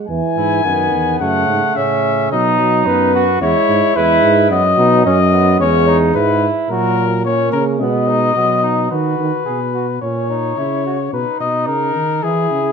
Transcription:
0.07 bass trombone E2, euphonium E3, trumpet G#5
0.36 bass trombone G#2, flugelhorn E4
0.64 bass trombone F#2, euphonium D#3, flugelhorn B3
0.92 bass trombone E2
1.20 bass trombone F#2, euphonium C#3, flugelhorn A3, trumpet F#5
1.48 bass trombone G#2
1.75 bass trombone A2, euphonium C#3, flugelhorn C#4, trumpet E5
2.31 bass trombone B2, euphonium F#3, flugelhorn D#4, trumpet D#5
2.60 euphonium F#3
2.86 bass trombone F#2, euphonium B3, trumpet B4
3.14 flugelhorn F#4
3.41 bass trombone E2, euphonium G#3, flugelhorn E4, trumpet C#5
3.68 bass trombone G#2
3.96 bass trombone E2, euphonium G#3, flugelhorn E4, trumpet B4
4.23 bass trombone G#2
4.50 bass trombone F#2, euphonium F#3, flugelhorn B3, trumpet D#5
4.78 bass trombone B2, flugelhorn D#4
5.05 bass trombone F#2, euphonium F#3, flugelhorn C#4, trumpet D#5
5.33 flugelhorn B3
5.60 bass trombone E2, euphonium G#3, flugelhorn C#4, trumpet C#5
5.87 flugelhorn D#4
6.14 bass trombone G#2, flugelhorn E4, trumpet B4
6.69 bass trombone A#2, euphonium F#3, flugelhorn F#4, trumpet A#4
7.25 euphonium A#3, flugelhorn C#4, trumpet C#5
7.52 bass trombone C#3, trumpet A#4
7.80 bass trombone B2, euphonium G#3, flugelhorn B3, trumpet D#5
8.08 flugelhorn D#4
8.35 bass trombone B2, euphonium F#3, flugelhorn B3
8.62 flugelhorn D#4
8.91 bass trombone D#3, flugelhorn F#4, trumpet B4
9.19 bass trombone D#3
9.46 bass trombone B2, flugelhorn G#4
9.74 flugelhorn F#4
10.02 bass trombone A#2, flugelhorn C#4, trumpet C#5
10.30 flugelhorn D#4
10.57 bass trombone C#3, flugelhorn E4
10.86 flugelhorn F#4
11.13 bass trombone B2, flugelhorn D#4, trumpet B4
11.40 bass trombone B2, trumpet D#5
11.67 bass trombone C#3, trumpet A#4
11.95 bass trombone D#3
12.23 bass trombone E3, flugelhorn E4, trumpet G#4
12.51 bass trombone C#3

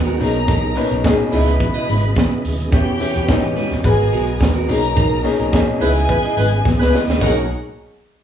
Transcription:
Already playing: fingered electric bass D#2, tonewheel organ G#3 B3 D#4 F#5 A#5, grand piano G#3 F#4 A#4 B4
0.05 clean electric guitar B3 F#4 A#4, high conga
0.18 fingered electric bass B1, grand piano B2 A#3 C#4 D#4 G#4, tonewheel organ B2 A#3 D#5, clean electric guitar D#4 G#4 B4, string section A#4 A#5, open hi-hat
0.34 muted clean electric guitar stroke, closed hi-hat
0.47 fingered electric bass B1, clean electric guitar D#4 G#4 A#4, kick, closed hi-hat, muted conga
0.63 muted clean electric guitar stroke
0.75 grand piano B2 A#3 C#4 D#4 B4, muted clean electric guitar stroke, open hi-hat
0.90 fingered electric bass B1, clean electric guitar D#4 G#4 A#4, closed hi-hat
1.04 grand piano B2 A#3 C#4 D#4 G#4, muted clean electric guitar stroke, kick, snare, closed hi-hat, high conga
1.18 muted clean electric guitar stroke
1.31 fingered electric bass C#2, tonewheel organ C#3 E3 G#3, grand piano C#3 B3 D#4 E4, clean electric guitar E4 B4 D#5, string section B4 B5, open hi-hat
1.46 clean electric guitar E4 B4 D#5, snare, closed hi-hat
1.59 muted clean electric guitar stroke, kick, closed hi-hat, muted conga
1.74 clean electric guitar E4 B4 D#5
1.88 fingered electric bass G#1, clean electric guitar E4 B4 D#5, open hi-hat, muted conga, low conga
2.02 muted clean electric guitar stroke, closed hi-hat
2.15 muted clean electric guitar stroke, kick, snare, closed hi-hat, high conga
2.30 muted clean electric guitar stroke, high conga
2.45 fingered electric bass D#2, open hi-hat
2.58 muted clean electric guitar stroke, closed hi-hat
2.71 fingered electric bass E2, grand piano E3 B3 C#4 G4, tonewheel organ E3 C#4 G4, clean electric guitar C#4 G4 B4, string section G4 G5, kick, closed hi-hat
2.86 muted clean electric guitar stroke
3.00 grand piano E3 B3 C#4 G4, muted clean electric guitar stroke, open hi-hat
3.14 fingered electric bass E2, clean electric guitar C#4 G4 B4, closed hi-hat
3.27 grand piano E3 B3 C#4 D#4, muted clean electric guitar stroke, muted fingered electric bass stroke, kick, snare, closed hi-hat, high conga
3.42 fingered electric bass E3, clean electric guitar C#4 G4 B4
3.56 clean electric guitar C#4 G4 B4, open hi-hat, low conga
3.71 fingered electric bass E2, muted clean electric guitar stroke, snare, closed hi-hat
3.83 fingered electric bass G#1, grand piano G#3 F#4 A#4 B4, tonewheel organ G#3 B3 D#5 A#5, string section G#4 G#5, kick, closed hi-hat, muted conga
3.99 muted clean electric guitar stroke
4.12 fingered electric bass B1, clean electric guitar B3 F#4 A#4, open hi-hat, muted conga
4.26 muted clean electric guitar stroke, closed hi-hat
4.40 fingered electric bass D#2, muted clean electric guitar stroke, kick, snare, closed hi-hat, high conga
4.54 clean electric guitar B3 F#4 A#4, high conga
4.67 fingered electric bass B1, grand piano B2 A#3 C#4 D#4 G#4, tonewheel organ B2 A#3, clean electric guitar D#4 G#4 B4, string section A#4 A#5, open hi-hat
4.83 muted clean electric guitar stroke, closed hi-hat
4.96 fingered electric bass B1, clean electric guitar D#4 G#4 A#4, kick, closed hi-hat
5.12 muted clean electric guitar stroke
5.23 grand piano B2 A#3 C#4 D#4 G#4, open hi-hat
5.38 fingered electric bass B1, clean electric guitar D#4 G#4 A#4, closed hi-hat
5.52 grand piano B2 A#3 C#4 D#4 G#4, muted clean electric guitar stroke, kick, snare, closed hi-hat, high conga
5.67 muted clean electric guitar stroke
5.80 fingered electric bass C#2, grand piano C#3 B3 D#4 E4, tonewheel organ C#3 E3 G#3 B3, clean electric guitar E4 B4 D#5, horn section E4 G#4 B4, string section G#4 G#5, open hi-hat
5.95 clean electric guitar E4 B4 D#5, snare, closed hi-hat
6.08 horn section E4 G#4 B4, muted clean electric guitar stroke, kick, closed hi-hat, muted conga
6.23 clean electric guitar E4 B4 D#5
6.36 fingered electric bass G#1, clean electric guitar E4 B4 D#5, horn section E4 G#4 B4, open hi-hat, muted conga, low conga
6.51 muted clean electric guitar stroke, closed hi-hat
6.65 fingered electric bass B1, muted clean electric guitar stroke, kick, snare, high conga
6.79 fingered electric bass C#2, horn section E4 G#4 B4, muted clean electric guitar stroke, snare, high conga
6.92 clean electric guitar E4 B4 D#5, snare
7.07 fingered electric bass D#2, clean electric guitar E4 B4 D#5, snare, high conga
7.20 fingered electric bass B1, grand piano B2 A#3 C#4 D#4 G#4, tonewheel organ B2 F#3 G#3 A#3 C#4 D#4, horn section F#3 D#4 A#4, string section D#4 C#5 F#5, clean electric guitar D#4 G#4 A#4, kick, crash, muted conga

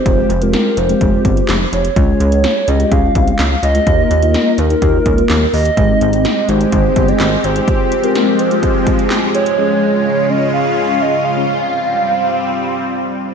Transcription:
0.06 analog synth bass F1, analog polysynth G#3 C4 F4 G4, soft synth lead C5, kick, closed hi-hat
0.30 analog synth bass F1, closed hi-hat
0.42 analog polysynth G#3 C4 F4 G4, soft synth lead A#4, closed hi-hat
0.53 snare, closed hi-hat
0.77 analog synth bass F1, soft synth lead C5, closed hi-hat
0.89 analog polysynth G#3 C4 F4 G4, closed hi-hat
1.01 analog synth bass F1, kick, closed hi-hat
1.25 analog synth bass G1, kick, closed hi-hat
1.37 closed hi-hat
1.49 analog synth bass F1, snare, clap, closed hi-hat
1.73 analog synth bass F1, soft synth lead C#5, closed hi-hat
1.85 closed hi-hat
1.96 analog synth bass C#2, analog polysynth G#3 C#4 F4 G#4, kick, closed hi-hat
2.20 analog synth bass C#2, closed hi-hat
2.32 closed hi-hat
2.44 snare, closed hi-hat
2.68 analog synth bass C#2, analog polysynth G#3 C#4 F4 G4, soft synth lead D#5, closed hi-hat
2.80 closed hi-hat
2.92 analog synth bass C#2, soft synth lead F5, kick, closed hi-hat
3.15 analog synth bass C2, kick, closed hi-hat
3.28 closed hi-hat
3.39 analog synth bass C#2, soft synth lead F5, snare, clap, closed hi-hat
3.63 analog synth bass C#2, soft synth lead D#5, closed hi-hat
3.75 analog polysynth G#3 C#4 F4 G#4, closed hi-hat
3.87 analog synth bass D#2, analog polysynth A#3 D#4 F4 A#4, kick, closed hi-hat
4.10 analog synth bass D#2, closed hi-hat
4.22 analog polysynth A#3 D#4 F4 A#4, closed hi-hat
4.34 snare, closed hi-hat
4.58 analog synth bass D#2, soft synth lead A#4, closed hi-hat
4.70 analog polysynth A#3 D#4 F4 A#4, closed hi-hat
4.82 analog synth bass D#2, kick, closed hi-hat
5.06 analog synth bass C#2, kick, closed hi-hat
5.18 closed hi-hat
5.30 analog synth bass D#2, snare, clap, closed hi-hat
5.53 analog synth bass D#2, soft synth lead D#5, open hi-hat
5.65 closed hi-hat
5.77 analog synth bass G#1, analog polysynth G#3 C4 D#4 G4, analog synth pad G#3 C4 G4, kick, closed hi-hat
6.01 analog synth bass G#1, closed hi-hat
6.13 closed hi-hat
6.25 snare, closed hi-hat
6.49 analog synth bass G#1, analog polysynth G#3 C4 D#4 G4, soft synth lead C5, closed hi-hat
6.61 closed hi-hat
6.72 analog synth bass G#1, soft synth lead C5, kick, closed hi-hat
6.96 analog synth bass G1, kick, closed hi-hat
7.08 soft synth lead D#5, closed hi-hat
7.20 analog synth bass G#1, snare, clap, closed hi-hat
7.44 analog synth bass G#1, soft synth lead C5, closed hi-hat
7.56 analog polysynth G#3 C4 D#4 G4, closed hi-hat
7.68 analog synth pad F3 G#3, analog polysynth G#3 C4 F4 G4, soft synth lead C5, kick, closed hi-hat
7.92 closed hi-hat
8.03 analog polysynth G#3 C4 F4 G4, soft synth lead A#4, closed hi-hat
8.15 snare, closed hi-hat
8.39 soft synth lead C5, closed hi-hat
8.51 analog polysynth G#3 C4 F4 G4, closed hi-hat
8.63 kick, closed hi-hat
8.87 kick, closed hi-hat
8.99 closed hi-hat
9.10 snare, clap, closed hi-hat
9.34 soft synth lead C#5, closed hi-hat
9.46 closed hi-hat
9.58 analog synth pad C#3 C#4 F4, analog polysynth G#3 C#4 F4 G#4
10.29 analog polysynth G#3 C#4 F4 G#4, soft synth lead D#5
10.54 soft synth lead F5
10.77 soft synth lead F5
11.01 soft synth lead D#5
11.25 soft synth lead F5
11.37 analog polysynth G#3 C#4 F4 G#4
11.49 analog synth pad G3 C4

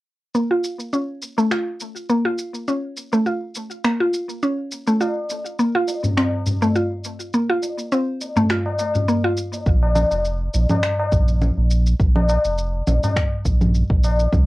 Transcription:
0.35 synth pluck A#3, shaker
0.51 synth pluck F4
0.64 shaker
0.80 shaker
0.93 synth pluck C#4, shaker
1.22 shaker
1.38 synth pluck A3, shaker
1.51 synth pluck F4, finger snap, shaker
1.80 shaker
1.96 shaker
2.10 synth pluck A#3, shaker
2.25 synth pluck F4
2.39 shaker
2.55 shaker
2.68 synth pluck C#4, shaker
2.97 shaker
3.13 synth pluck A3, shaker
3.26 synth pluck F4, shaker
3.55 shaker
3.71 shaker
3.84 synth pluck A#3, finger snap, shaker
4.00 synth pluck F4
4.14 shaker
4.29 shaker
4.43 synth pluck C#4, shaker
4.72 shaker
4.87 synth pluck A3, shaker
5.01 synth pluck F4, tabla na, shaker
5.30 tabla tin, shaker
5.46 shaker
5.59 synth pluck A#3, shaker
5.75 synth pluck F4
5.88 tabla tin, shaker
6.04 tabla ge, shaker
6.17 synth pluck C4, finger snap, tabla na, shaker
6.46 tabla ge, shaker
6.62 synth pluck A3, tabla tin, shaker
6.75 synth pluck F4, shaker
6.92 tabla tin
7.04 shaker
7.20 shaker
7.34 synth pluck A#3, shaker
7.49 synth pluck F4
7.62 tabla tin, shaker
7.79 shaker
7.92 synth pluck C4, shaker
8.21 tabla tin, shaker
8.36 synth pluck A3, tabla ge, shaker
8.50 synth pluck F4, finger snap, shaker
8.66 tabla na
8.79 tabla na, shaker
8.95 tabla ge, shaker
9.08 synth pluck A#3, shaker
9.24 synth pluck F4
9.37 shaker
9.53 tabla tin, shaker
9.66 sub bass A#1, kick, shaker
9.83 tabla na
9.95 tabla na, tabla tin, low conga, shaker
10.11 sub bass F1, tabla na, shaker
10.25 shaker
10.54 sub bass A#1, tabla tin, shaker
10.70 tabla na, low conga, tabla ge, shaker
10.83 finger snap, shaker
10.99 tabla na
11.12 sub bass A#1, kick, tabla ge, shaker
11.28 tabla tin, shaker
11.42 low conga, shaker
11.57 sub bass A#1, tabla tin
11.71 shaker
11.87 shaker
12.00 sub bass A#1, kick, shaker
12.16 tabla na, low conga
12.29 tabla na, tabla tin, shaker
12.45 sub bass F1, shaker
12.58 shaker
12.87 sub bass A#1, tabla tin, low conga, shaker
13.03 tabla na, tabla ge, shaker
13.16 finger snap, kick, shaker
13.45 sub bass A#1, kick, shaker
13.61 tabla ge, low conga, shaker
13.75 shaker
13.90 sub bass A#1, kick, tabla tin
14.04 tabla na, shaker
14.19 tabla tin, shaker
14.33 sub bass C2, kick, low conga, shaker

